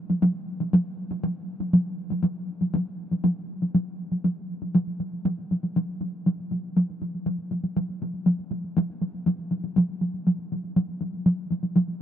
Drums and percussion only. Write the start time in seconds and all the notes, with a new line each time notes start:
0.10 taiko high
0.22 taiko high
0.60 taiko high
0.73 taiko high
1.11 taiko high
1.23 taiko high
1.60 taiko high
1.73 taiko high
2.10 taiko high
2.23 taiko high
2.61 taiko high
2.74 taiko high
3.11 taiko high
3.24 taiko high
3.62 taiko high
3.75 taiko high
4.12 taiko high
4.24 taiko high
4.62 taiko high
4.75 taiko high
4.88 taiko high
5.00 taiko high
5.14 taiko high
5.26 taiko high
5.39 taiko high
5.51 taiko high
5.63 taiko high
5.76 taiko high
5.89 taiko high
6.01 taiko high
6.26 taiko high
6.39 taiko high
6.51 taiko high
6.77 taiko high
6.90 taiko high
7.02 taiko high
7.14 taiko high
7.26 taiko high
7.39 taiko high
7.51 taiko high
7.64 taiko high
7.76 taiko high
7.89 taiko high
8.02 taiko high
8.14 taiko high
8.26 taiko high
8.39 taiko high
8.52 taiko high
8.64 taiko high
8.77 taiko high
8.90 taiko high
9.02 taiko high
9.14 taiko high
9.26 taiko high
9.39 taiko high
9.51 taiko high
9.64 taiko high
9.76 taiko high
9.89 taiko high
10.02 taiko high
10.14 taiko high
10.27 taiko high
10.39 taiko high
10.52 taiko high
10.64 taiko high
10.76 taiko high
10.89 taiko high
11.01 taiko high
11.14 taiko high
11.26 taiko high
11.51 taiko high
11.63 taiko high
11.76 taiko high
11.88 taiko high